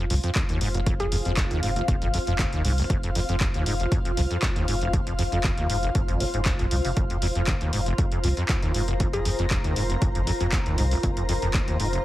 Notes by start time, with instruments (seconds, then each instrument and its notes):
Already playing: ambient pad F4 C5 F5
0.10 sub bass C2, acid bass F2, open hi-hat
0.24 acid bass F2, closed hi-hat
0.35 acid bass D#2, kick, clap, closed hi-hat
0.49 acid bass D#2, closed hi-hat
0.61 sub bass F1, acid bass G#2, open hi-hat
0.74 acid bass F1, closed hi-hat
0.86 acid bass F2, kick, closed hi-hat
1.00 acid bass F2, synth pluck G#4, closed hi-hat
1.12 sub bass F1, acid bass F2, open hi-hat
1.25 sub bass F1, acid bass F2, closed hi-hat
1.37 acid bass D#2, kick, clap, closed hi-hat
1.51 acid bass D#2, closed hi-hat
1.63 acid bass G#2, open hi-hat
1.76 acid bass F1, closed hi-hat
1.88 sub bass F1, acid bass F2, kick, closed hi-hat
2.02 sub bass G#1, acid bass F2, closed hi-hat
2.14 acid bass F2, open hi-hat
2.27 sub bass F1, acid bass F2, closed hi-hat
2.39 acid bass D#2, kick, clap, closed hi-hat
2.53 acid bass D#2, closed hi-hat
2.65 sub bass C2, acid bass G#2, open hi-hat
2.78 acid bass F1, open hi-hat
2.90 sub bass F1, acid bass F2, kick, closed hi-hat
3.03 acid bass F2, closed hi-hat
3.15 sub bass F1, acid bass F2, open hi-hat
3.29 sub bass F1, acid bass F2, closed hi-hat
3.40 acid bass D#2, kick, clap, closed hi-hat
3.54 acid bass D#2, closed hi-hat
3.66 acid bass G#2, open hi-hat
3.80 acid bass F1, closed hi-hat
3.92 acid bass F2, kick, closed hi-hat
4.05 acid bass F2, closed hi-hat
4.17 sub bass C2, acid bass F2, open hi-hat
4.31 acid bass F2, closed hi-hat
4.42 acid bass D#2, kick, clap, closed hi-hat
4.56 acid bass D#2, closed hi-hat
4.68 sub bass F1, acid bass G#2, open hi-hat
4.81 acid bass F1, closed hi-hat
4.93 acid bass F2, kick, closed hi-hat
5.07 acid bass F2, closed hi-hat
5.19 sub bass F1, acid bass F2, open hi-hat
5.32 sub bass F1, acid bass F2, closed hi-hat
5.44 acid bass D#2, kick, clap, closed hi-hat
5.57 acid bass D#2, closed hi-hat
5.70 acid bass G#2, open hi-hat
5.83 acid bass F1, closed hi-hat
5.95 sub bass F1, acid bass F2, kick, closed hi-hat
6.08 sub bass G#1, acid bass F2, closed hi-hat
6.20 acid bass F3, open hi-hat
6.34 sub bass F1, acid bass G#2, closed hi-hat
6.45 acid bass D#2, kick, clap, closed hi-hat
6.59 sub bass A#1, acid bass F2, closed hi-hat
6.71 sub bass C2, acid bass F2, open hi-hat
6.85 sub bass F1, acid bass C3, open hi-hat
6.97 sub bass F1, acid bass F2, kick, closed hi-hat
7.10 acid bass F2, closed hi-hat
7.22 sub bass F1, acid bass F2, open hi-hat
7.35 sub bass F1, acid bass F2, ambient pad A#5, closed hi-hat
7.47 acid bass D#2, kick, clap, closed hi-hat
7.61 acid bass D#2, closed hi-hat
7.73 acid bass G#2, open hi-hat
7.86 acid bass F1, closed hi-hat
7.98 acid bass F2, kick, closed hi-hat
8.12 acid bass F2, closed hi-hat
8.24 sub bass C2, acid bass F2, open hi-hat
8.37 acid bass F2, closed hi-hat
8.49 acid bass D#2, kick, clap, closed hi-hat
8.62 acid bass D#2, closed hi-hat
8.74 sub bass F1, acid bass G#2, open hi-hat
8.88 acid bass F1, closed hi-hat
9.00 acid bass F2, kick, closed hi-hat
9.13 acid bass F2, synth pluck G#4, closed hi-hat
9.25 sub bass F1, acid bass F2, open hi-hat
9.39 sub bass F1, acid bass F2, closed hi-hat
9.51 acid bass D#2, kick, clap, closed hi-hat
9.64 acid bass D#2, closed hi-hat
9.76 acid bass G#2, open hi-hat
9.90 acid bass F1, closed hi-hat
10.02 sub bass F1, acid bass F2, kick, closed hi-hat
10.15 sub bass G#1, acid bass F2, closed hi-hat
10.27 acid bass F2, open hi-hat
10.41 sub bass F1, acid bass F2, closed hi-hat
10.52 acid bass D#2, kick, clap, closed hi-hat
10.66 acid bass D#2, closed hi-hat
10.78 sub bass C2, acid bass G#2, open hi-hat
10.91 acid bass F1, open hi-hat
11.03 sub bass F1, acid bass F2, kick, closed hi-hat
11.17 acid bass F2, closed hi-hat
11.29 sub bass F1, acid bass F2, open hi-hat
11.42 sub bass F1, acid bass F2, closed hi-hat
11.54 acid bass D#2, kick, clap, closed hi-hat
11.68 acid bass D#2, closed hi-hat
11.80 acid bass G#2, open hi-hat
11.93 acid bass F1, closed hi-hat